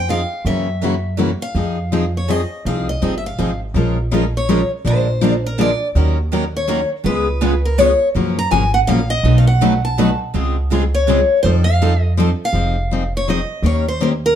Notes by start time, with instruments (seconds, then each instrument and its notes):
Already playing: upright bass F2
0.08 steel-string acoustic guitar F3 C4 D#4 G#4 F5
0.45 upright bass F#2, steel-string acoustic guitar C#3 E3 F#3 A#3 C#4 E4 F#4 A#4 E5
0.81 steel-string acoustic guitar C#3 E3 F#3 A#3 C#4 E4 F#4 A#4
1.17 steel-string acoustic guitar C#3 E3 F#3 A#3 C#4 E4 F#4 A#4
1.42 steel-string acoustic guitar F5
1.55 upright bass F2, steel-string acoustic guitar F3 C4 D#4 G#4
1.92 steel-string acoustic guitar F3 C4 D#4 G#4
2.17 steel-string acoustic guitar C#5
2.29 steel-string acoustic guitar F3 C4 D#4 G#4 D#5
2.65 upright bass C2, steel-string acoustic guitar F3 C4 D#4 G#4 F5
2.89 steel-string acoustic guitar D#5
3.02 upright bass G1, steel-string acoustic guitar F3 C4 D#4 G#4
3.18 steel-string acoustic guitar E5
3.26 steel-string acoustic guitar F5
3.39 upright bass G#1, steel-string acoustic guitar F3 C4 D#4 G#4
3.74 upright bass A#1, steel-string acoustic guitar F3 G#3 C#4 F4 A#4
4.11 steel-string acoustic guitar F3 G#3 C#4 F4 A#4
4.37 steel-string acoustic guitar C#5
4.49 steel-string acoustic guitar F3 G#3 C#4 F4 A#4
4.85 upright bass A#1, steel-string acoustic guitar D3 F3 G#3 A#3 D4 F4 G#4 A#4 C5
5.21 steel-string acoustic guitar D3 F3 G#3 A#3 D4 F4 G#4 A#4
5.46 steel-string acoustic guitar A#4
5.58 steel-string acoustic guitar D3 F3 G#3 A#3 D4 F4 G#4 A#4 D5
5.95 upright bass D#2, steel-string acoustic guitar D#3 F#3 A#3 C#4 D#4 F#4 A#4
6.32 steel-string acoustic guitar D#3 F#3 A#3 C#4 D#4 F#4 A#4
6.57 steel-string acoustic guitar C#5
6.68 steel-string acoustic guitar D#3 F#3 A#3 C#4 D#4 F#4 A#4
7.04 upright bass C#2, steel-string acoustic guitar C#3 G#3 B3 F4 G#4 B4
7.41 steel-string acoustic guitar C#3 G#3 B3 F4 G#4
7.65 steel-string acoustic guitar A#4
7.78 steel-string acoustic guitar C#3 G#3 B3 F4 G#4 C#5
8.15 upright bass F#2, steel-string acoustic guitar C#3 F3 F#3 A#3 C#4 F4 F#4 A#4
8.39 steel-string acoustic guitar A#5
8.51 upright bass G#1, steel-string acoustic guitar C#3 F3 F#3 A#3 C#4 F4 F#4 A#4 G#5
8.74 steel-string acoustic guitar F#5
8.87 upright bass A#1, steel-string acoustic guitar C#3 F3 F#3 A#3 C#4 F4 F#4 A#4 F5
9.10 steel-string acoustic guitar D#5
9.23 upright bass B1, steel-string acoustic guitar B2 F#3 A3 D#4 F#4 B4
9.38 steel-string acoustic guitar F5
9.47 steel-string acoustic guitar F#5
9.61 steel-string acoustic guitar B2 F#3 A3 D#4 F#4 B4
9.85 steel-string acoustic guitar A5
9.98 steel-string acoustic guitar B2 F#3 A3 D#4 F#4 B4
10.34 upright bass C#2, steel-string acoustic guitar C#3 G#3 C4 F4 G#4
10.72 steel-string acoustic guitar C#3 G#3 C4 F4 G#4
10.95 steel-string acoustic guitar C#5
11.09 steel-string acoustic guitar C#3 G#3 C4 F4 G#4
11.43 upright bass F2, steel-string acoustic guitar F3 C4 D#4 A4 C5
11.64 steel-string acoustic guitar F5
11.82 steel-string acoustic guitar F3 C4 D#4 A4
12.17 steel-string acoustic guitar F3 C4 D#4 A4
12.45 steel-string acoustic guitar F5
12.53 upright bass F1, steel-string acoustic guitar F3 C4 D#4 G#4
12.91 steel-string acoustic guitar F3 C4 D#4 G#4
13.17 steel-string acoustic guitar C#5
13.28 steel-string acoustic guitar F3 C4 D#4 G#4 D#5
13.62 upright bass D#2, steel-string acoustic guitar D#3 A#3 C#4 G4 A#4 C#5
13.88 steel-string acoustic guitar C5
14.00 steel-string acoustic guitar D#3 A#3 C#4 G4 A#4 C5
14.26 steel-string acoustic guitar A#4